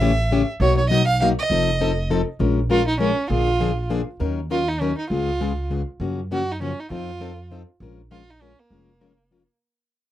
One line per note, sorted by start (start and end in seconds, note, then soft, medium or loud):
0.00 0.42 A1 medium
0.00 0.11 C#3 medium
0.00 0.11 E3 medium
0.00 0.11 A3 medium
0.00 0.11 C#4 loud
0.00 0.12 G4 loud
0.00 0.48 E5 loud
0.31 0.41 C#3 medium
0.31 0.41 E3 medium
0.31 0.42 A3 medium
0.31 0.42 C#4 loud
0.31 0.42 G4 medium
0.60 1.32 B1 medium
0.60 0.80 B2 medium
0.60 0.80 F#3 medium
0.60 0.80 A#3 medium
0.60 0.80 D#4 medium
0.60 0.80 F#4 medium
0.60 0.77 C#5 medium
0.78 0.89 C#5 medium
0.90 1.01 B2 medium
0.90 1.01 F#3 loud
0.90 1.01 A#3 medium
0.90 1.01 D#4 loud
0.90 1.01 F#4 loud
0.90 1.06 D#5 medium
1.07 1.19 F5 medium
1.21 1.31 B2 medium
1.21 1.31 F#3 medium
1.21 1.32 A#3 medium
1.21 1.32 D#4 medium
1.21 1.32 F#4 loud
1.21 1.29 F5 medium
1.39 2.07 D#5 medium
1.50 2.22 F1 medium
1.50 1.70 F3 medium
1.50 1.70 C4 medium
1.50 1.70 D#4 medium
1.50 1.70 A4 medium
1.81 1.91 F3 medium
1.81 1.91 C4 medium
1.81 1.91 D#4 loud
1.81 1.91 A4 medium
2.10 2.21 F3 medium
2.10 2.21 C4 medium
2.10 2.21 D#4 medium
2.10 2.21 A4 medium
2.39 3.12 A#1 medium
2.39 2.59 F3 medium
2.39 2.59 G#3 medium
2.39 2.59 C#4 medium
2.39 2.59 F4 medium
2.39 2.60 A#4 medium
2.69 2.80 F3 medium
2.69 2.80 G#3 medium
2.69 2.80 C#4 medium
2.69 2.81 F4 medium
2.69 2.87 F4 loud
2.69 2.81 A#4 medium
2.88 2.99 D#4 medium
2.99 3.10 F3 medium
2.99 3.11 G#3 medium
2.99 3.28 C#4 medium
2.99 3.11 C#4 medium
2.99 3.11 F4 medium
2.99 3.11 A#4 medium
3.29 4.02 A#1 medium
3.29 3.49 D3 medium
3.29 3.49 F3 medium
3.29 3.49 A#3 medium
3.29 3.49 D4 medium
3.29 3.86 F4 medium
3.29 3.49 G#4 medium
3.60 3.70 D3 medium
3.60 3.70 F3 medium
3.60 3.71 A#3 medium
3.60 3.71 D4 medium
3.60 3.71 G#4 loud
3.89 4.00 D3 medium
3.89 4.00 F3 medium
3.89 4.01 A#3 medium
3.89 4.01 D4 medium
3.89 4.01 G#4 medium
4.20 4.92 D#2 medium
4.20 4.39 D#3 medium
4.20 4.39 F#3 medium
4.20 4.39 C#4 medium
4.20 4.40 D#4 medium
4.20 4.40 A#4 medium
4.50 4.61 D#3 medium
4.50 4.61 F#3 medium
4.50 4.61 C#4 medium
4.50 4.61 D#4 medium
4.50 4.70 F4 loud
4.50 4.61 A#4 loud
4.68 4.82 D#4 medium
4.80 4.91 D#3 medium
4.80 4.91 F#3 medium
4.80 4.97 C#4 medium
4.80 4.91 C#4 medium
4.80 4.92 D#4 medium
4.80 4.91 A#4 medium
4.98 5.09 D#4 medium
5.10 5.82 C#2 medium
5.10 5.30 C#3 medium
5.10 5.30 G#3 medium
5.10 5.30 B3 medium
5.10 5.66 F4 medium
5.10 5.30 F4 medium
5.10 5.30 G#4 medium
5.41 5.51 C#3 medium
5.41 5.51 G#3 medium
5.41 5.51 B3 medium
5.41 5.51 F4 medium
5.41 5.52 G#4 medium
5.70 5.81 C#3 medium
5.70 5.81 G#3 medium
5.70 5.81 B3 medium
5.70 5.81 F4 medium
5.70 5.81 G#4 medium
6.00 6.72 F#2 medium
6.00 6.20 C#3 medium
6.00 6.20 F3 medium
6.00 6.20 A#3 medium
6.00 6.20 C#4 medium
6.00 6.20 F#4 medium
6.31 6.41 C#3 medium
6.31 6.42 F3 medium
6.31 6.42 A#3 medium
6.31 6.42 C#4 medium
6.31 6.42 F#4 loud
6.31 6.53 F#4 loud
6.51 6.62 D#4 medium
6.61 6.71 C#3 medium
6.61 6.71 F3 medium
6.61 6.71 A#3 medium
6.61 6.72 C#4 medium
6.61 6.81 C#4 medium
6.61 6.72 F#4 medium
6.80 6.91 D#4 medium
6.90 7.63 F2 medium
6.90 7.10 F3 medium
6.90 7.10 C4 medium
6.90 7.10 D#4 medium
6.90 7.47 F4 medium
6.90 7.10 A4 medium
7.20 7.31 F3 medium
7.20 7.31 C4 medium
7.20 7.31 D#4 medium
7.20 7.32 A4 medium
7.51 7.61 F3 medium
7.51 7.62 C4 medium
7.51 7.62 D#4 medium
7.51 7.62 A4 loud
7.80 8.53 A#1 medium
7.80 8.00 F3 medium
7.80 8.00 G#3 medium
7.80 8.01 C#4 medium
7.80 8.01 F4 medium
7.80 8.01 A#4 medium
8.11 8.21 F3 medium
8.11 8.22 G#3 medium
8.11 8.22 C#4 medium
8.11 8.31 F4 loud
8.11 8.22 F4 medium
8.11 8.22 A#4 medium
8.30 8.43 D#4 medium
8.41 8.51 F3 medium
8.41 8.52 G#3 medium
8.41 8.52 C#4 medium
8.41 8.60 C#4 medium
8.41 8.52 F4 medium
8.41 8.52 A#4 medium
8.59 9.49 A#3 medium
8.70 9.43 F1 medium
8.70 8.90 F3 medium
8.70 8.90 G#3 medium
8.70 8.90 C#4 medium
8.70 8.91 F4 medium
8.70 8.91 A#4 medium
9.01 9.11 F3 medium
9.01 9.11 G#3 medium
9.01 9.12 C#4 medium
9.01 9.12 F4 medium
9.01 9.12 A#4 loud
9.31 9.41 F3 medium
9.31 9.42 G#3 medium
9.31 9.42 C#4 medium
9.31 9.42 F4 medium
9.31 9.42 A#4 medium